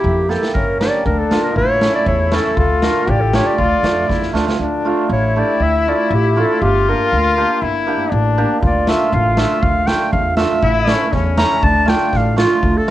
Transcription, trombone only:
Already playing: E4
0.56 C#4
1.05 D4
1.55 E4
2.57 F4
3.08 G4
3.58 F4
4.09 E4
4.35 D4
4.61 D4
5.10 E4
6.61 F4
7.62 E4
8.11 D4
8.62 F4
10.63 E4
11.13 C#4
11.62 D4
12.63 A3

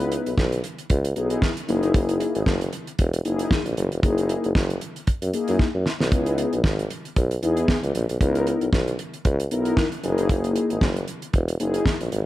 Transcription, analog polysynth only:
Already playing: B3 D#4 E4 B4
1.16 B3 D#4 E4 G#4
1.68 A#3 D#4 E4 G#4
3.24 A#3 D#4 E4 G#4
4.03 A#3 D#4 E4 G#4
5.33 A#3 D#4 E4 G#4
6.11 B3 D#4 E4 G#4
7.42 B3 D#4 E4 G#4
8.21 B3 D#4 E4 A#4
9.51 B3 D#4 E4 A#4
10.03 A#3 D#4 E4 G#4
11.60 A#3 D#4 E4 G#4

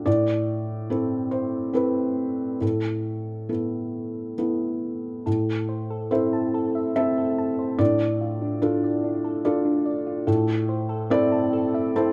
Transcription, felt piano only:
0.06 A2 D5
0.90 C4 E4 A4
1.31 C5
1.73 C4 E4 A4 B4
2.61 A2 A4
3.49 B3 E4 A4
4.38 B3 E4 A4
5.26 A2
6.11 C4 E4 A4 C5
6.96 C4 E4 A4 E5
7.78 A2 D5
8.62 D4 F4 A4
9.45 D4 F4 A4
10.27 A2
11.10 C4 E4 A4 D5
11.96 C4 E4 A4 C5

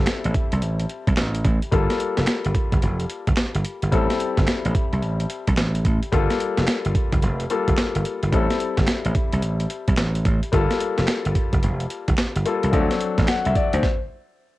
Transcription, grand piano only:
Already playing: G3 C4 E4 A4
1.71 G3 A#3 F4 A4
3.92 G3 C4 E4 A4
6.12 G3 A#3 F4 A4
7.50 G3 A#3 F4 A4
8.32 G3 C4 E4 A4
10.52 G3 A#3 F4 A4
12.45 G3 A#3 F4 A4
12.72 F3 C4 D4 A4
12.78 F#3
13.28 F#5
13.46 E5
13.56 D5
13.73 C5

